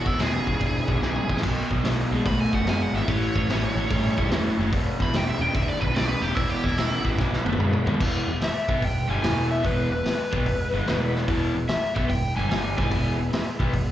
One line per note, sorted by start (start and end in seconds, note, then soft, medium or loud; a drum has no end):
0.00 1.41 B3 medium
0.00 1.41 E4 medium
0.00 1.41 G#4 medium
0.05 0.15 E1 medium
0.05 0.18 E2 medium
0.05 0.18 B2 medium
0.05 0.20 E4 medium
0.05 kick medium
0.19 0.37 E1 medium
0.19 0.44 E2 medium
0.19 0.44 C#3 loud
0.19 1.40 G#4 loud
0.19 snare loud
0.19 open hi-hat medium
0.46 0.56 E1 medium
0.46 0.59 E2 medium
0.46 0.59 C#3 medium
0.46 kick medium
0.60 0.79 E1 medium
0.60 0.85 E2 medium
0.60 0.85 D3 medium
0.60 kick loud
0.60 open hi-hat medium
0.88 0.97 B1 medium
0.88 1.00 E2 medium
0.88 1.01 D3 medium
0.88 kick medium
1.01 1.19 B1 loud
1.01 1.27 E2 medium
1.01 1.27 C#3 medium
1.01 snare medium
1.16 mid tom medium
1.29 1.39 A#1 medium
1.29 1.42 E2 medium
1.29 1.42 C#3 medium
1.29 kick medium
1.37 snare medium
1.42 1.61 B1 medium
1.42 1.68 B2 medium
1.42 1.68 F#3 loud
1.42 1.57 C4 medium
1.42 1.57 E4 medium
1.42 1.56 G4 medium
1.42 1.56 E5 medium
1.42 kick loud
1.42 open hi-hat medium
1.42 crash medium
1.55 3.06 B3 medium
1.55 3.06 D#4 medium
1.55 3.06 F#4 medium
1.55 3.06 D#5 medium
1.70 1.80 B1 medium
1.70 1.83 B2 medium
1.70 1.83 F#3 medium
1.70 kick medium
1.84 2.02 B1 medium
1.84 2.09 B2 loud
1.84 2.09 G#3 loud
1.84 snare loud
1.84 open hi-hat medium
2.11 2.20 B1 medium
2.11 2.24 B2 medium
2.11 2.25 G#3 medium
2.25 2.43 B1 medium
2.25 2.50 B2 medium
2.25 2.50 A3 medium
2.25 2.39 B5 medium
2.25 kick loud
2.25 open hi-hat medium
2.40 2.53 G#5 medium
2.53 2.62 F#1 medium
2.53 2.66 B2 medium
2.53 2.66 A3 medium
2.53 2.67 F#5 medium
2.53 kick medium
2.65 2.83 F#2 medium
2.65 2.92 B2 medium
2.65 2.92 G#3 medium
2.65 2.81 G#5 medium
2.65 snare loud
2.65 open hi-hat medium
2.82 2.94 F#5 medium
2.93 3.02 G#1 loud
2.93 3.07 B2 medium
2.93 3.07 G#3 medium
2.93 3.08 E5 medium
2.93 snare soft
3.07 3.26 A1 loud
3.07 3.32 A2 medium
3.07 3.32 E3 loud
3.07 4.71 A3 medium
3.07 4.71 C#4 medium
3.07 4.70 E4 medium
3.07 4.71 C#5 medium
3.07 3.22 C#5 medium
3.07 kick loud
3.07 open hi-hat medium
3.23 4.42 C#5 loud
3.35 3.44 A1 medium
3.35 3.48 A2 medium
3.35 3.48 E3 medium
3.35 kick medium
3.48 3.66 A1 medium
3.48 3.74 A2 loud
3.48 3.74 F#3 loud
3.48 snare loud
3.48 open hi-hat medium
3.76 3.85 A1 loud
3.76 3.89 A2 medium
3.76 3.89 F#3 medium
3.90 4.08 A1 loud
3.90 4.15 A2 medium
3.90 4.15 G3 medium
3.90 kick loud
3.90 open hi-hat medium
4.18 4.27 E1 medium
4.18 4.30 A2 medium
4.18 4.30 G3 medium
4.18 kick medium
4.30 4.48 E2 medium
4.30 4.56 A2 medium
4.30 4.56 F#3 medium
4.30 snare loud
4.30 open hi-hat medium
4.58 4.72 F#1 medium
4.58 4.71 A2 medium
4.58 4.71 F#3 medium
4.72 4.90 E1 loud
4.72 4.97 E2 medium
4.72 4.97 B2 loud
4.72 7.16 G#3 medium
4.72 7.16 B3 medium
4.72 7.16 E4 medium
4.72 7.16 B4 medium
4.72 kick loud
4.72 open hi-hat medium
4.99 5.09 E1 medium
4.99 5.12 E2 medium
4.99 5.12 B2 medium
4.99 5.14 B5 medium
4.99 kick medium
4.99 snare soft
5.12 5.30 E1 medium
5.12 5.38 E2 medium
5.12 5.38 C#3 loud
5.12 snare loud
5.12 open hi-hat medium
5.16 5.28 G5 loud
5.29 5.41 E5 loud
5.39 5.49 E1 loud
5.39 5.53 E2 medium
5.39 5.53 C#3 medium
5.39 5.54 G5 medium
5.54 5.72 E1 medium
5.54 5.79 E2 medium
5.54 5.79 D3 medium
5.54 5.68 E5 medium
5.54 kick loud
5.54 open hi-hat medium
5.68 5.80 D5 medium
5.81 5.91 B1 medium
5.81 5.94 E2 medium
5.81 5.94 D3 medium
5.81 5.95 B4 medium
5.81 kick medium
5.95 6.13 B1 medium
5.95 6.20 E2 medium
5.95 6.20 C#3 medium
5.95 6.08 D5 loud
5.95 snare loud
5.95 open hi-hat medium
6.08 6.22 B4 medium
6.22 6.31 E1 loud
6.22 6.35 E2 medium
6.22 6.35 C#3 medium
6.22 6.35 G4 medium
6.35 6.54 E1 medium
6.35 6.61 E2 loud
6.35 6.61 B2 loud
6.35 6.49 E4 loud
6.35 kick loud
6.35 open hi-hat medium
6.49 6.64 G4 medium
6.64 6.73 E1 medium
6.64 6.76 E2 medium
6.64 6.76 B2 medium
6.64 6.77 E4 medium
6.64 kick medium
6.64 snare soft
6.76 6.94 E1 medium
6.76 7.02 E2 medium
6.76 7.03 C#3 loud
6.76 7.17 E4 loud
6.76 snare loud
6.76 open hi-hat medium
7.05 7.14 A1 loud
7.05 7.17 E2 medium
7.05 7.18 C#3 medium
7.05 kick medium
7.18 7.36 B1 medium
7.18 7.43 B2 medium
7.18 8.00 F#3 medium
7.18 7.43 F#3 medium
7.18 7.99 B3 medium
7.18 7.99 D#4 medium
7.18 8.00 B4 medium
7.18 kick loud
7.18 snare medium
7.33 snare medium
7.45 7.54 F#1 medium
7.45 7.57 B2 medium
7.45 7.58 A3 medium
7.45 high tom medium
7.53 high tom medium
7.58 7.76 F#2 medium
7.58 7.84 B2 medium
7.58 7.84 G#3 loud
7.58 mid tom medium
7.73 mid tom medium
7.86 7.95 D#2 medium
7.86 7.99 B2 medium
7.86 7.99 G#3 medium
7.86 floor tom loud
7.94 floor tom medium
7.99 8.26 E1 medium
7.99 8.26 E2 medium
7.99 8.27 B2 loud
7.99 8.27 E3 loud
7.99 11.25 G#3 medium
7.99 11.25 B3 medium
7.99 11.25 E4 medium
7.99 11.25 B4 medium
7.99 kick loud
7.99 crash loud
8.27 8.40 E1 medium
8.27 8.39 E2 medium
8.27 8.39 B2 medium
8.41 8.85 E5 medium
8.41 muted picked electric bass stroke soft
8.41 muted overdriven electric guitar stroke medium
8.41 snare loud
8.41 open hi-hat medium
8.68 8.81 B1 loud
8.68 8.81 B2 medium
8.68 8.82 F#3 loud
8.68 8.83 B3 medium
8.68 kick loud
8.82 9.08 E1 medium
8.82 9.04 E2 medium
8.82 9.04 B2 medium
8.82 9.10 G5 medium
8.82 kick medium
8.82 open hi-hat medium
9.08 9.22 G1 medium
9.08 9.21 G2 medium
9.08 9.22 D3 loud
9.08 9.23 G3 loud
9.08 9.51 G#5 medium
9.21 9.61 E1 loud
9.21 9.62 E2 medium
9.21 9.62 B2 loud
9.21 9.63 E3 loud
9.21 snare loud
9.21 open hi-hat medium
9.51 9.65 E5 medium
9.63 9.90 E1 medium
9.63 9.89 E2 medium
9.63 9.90 B2 loud
9.63 9.91 E3 loud
9.63 9.90 B4 loud
9.63 kick loud
9.63 open hi-hat medium
9.90 10.04 E1 medium
9.90 10.02 E2 medium
9.90 10.02 B2 medium
9.90 11.11 B4 medium
10.05 muted picked electric bass stroke soft
10.05 muted overdriven electric guitar stroke medium
10.05 snare loud
10.05 open hi-hat medium
10.32 10.45 B1 medium
10.32 10.45 B2 medium
10.32 10.46 F#3 medium
10.32 10.46 B3 medium
10.32 kick loud
10.46 10.71 E1 medium
10.46 10.68 E2 medium
10.46 10.68 B2 medium
10.46 kick medium
10.46 open hi-hat medium
10.73 10.86 G1 medium
10.73 10.86 G2 medium
10.73 10.87 D3 medium
10.73 10.87 G3 loud
10.86 11.25 E1 medium
10.86 11.27 E2 medium
10.86 11.28 B2 loud
10.86 11.28 E3 medium
10.86 snare loud
10.86 open hi-hat medium
11.15 snare soft
11.28 11.53 E1 loud
11.28 11.54 E2 loud
11.28 11.55 B2 loud
11.28 11.55 E3 loud
11.28 13.92 G#3 medium
11.28 13.92 B3 medium
11.28 13.92 E4 medium
11.28 kick loud
11.28 open hi-hat medium
11.55 11.67 E1 medium
11.55 11.66 E2 medium
11.55 11.66 B2 medium
11.68 11.94 E5 medium
11.68 muted picked electric bass stroke soft
11.68 muted overdriven electric guitar stroke medium
11.68 snare loud
11.68 open hi-hat medium
11.95 12.09 B1 loud
11.95 12.08 B2 medium
11.95 12.09 F#3 loud
11.95 12.09 B3 medium
11.95 12.01 E5 medium
11.95 kick medium
12.09 12.35 E1 medium
12.09 12.31 E2 medium
12.09 12.31 B2 medium
12.09 12.36 G5 loud
12.09 kick medium
12.09 open hi-hat medium
12.36 12.49 G1 medium
12.36 12.48 G2 medium
12.36 12.49 D3 loud
12.36 12.50 G3 loud
12.36 12.49 G#5 medium
12.49 12.76 G1 medium
12.49 12.76 G2 loud
12.49 12.77 D3 medium
12.49 12.77 G3 loud
12.49 12.76 G#5 medium
12.49 snare loud
12.49 open hi-hat medium
12.77 12.90 E1 loud
12.77 12.89 E2 loud
12.77 12.90 B2 medium
12.77 12.90 E3 loud
12.77 13.15 G#5 medium
12.77 kick medium
12.77 snare soft
12.90 13.17 E1 medium
12.90 13.17 E2 loud
12.90 13.17 B2 loud
12.90 13.18 E3 loud
12.90 kick loud
12.90 open hi-hat medium
13.18 13.31 E1 medium
13.18 13.29 E2 medium
13.18 13.29 B2 medium
13.32 muted overdriven electric guitar stroke medium
13.32 muted picked electric bass stroke soft
13.32 snare loud
13.32 open hi-hat medium
13.60 13.72 B1 medium
13.60 13.73 B2 medium
13.60 13.73 F#3 medium
13.60 13.73 B3 medium
13.60 kick loud
13.73 13.92 E1 medium
13.73 13.92 E2 medium
13.73 13.92 B2 medium
13.73 kick medium
13.73 open hi-hat medium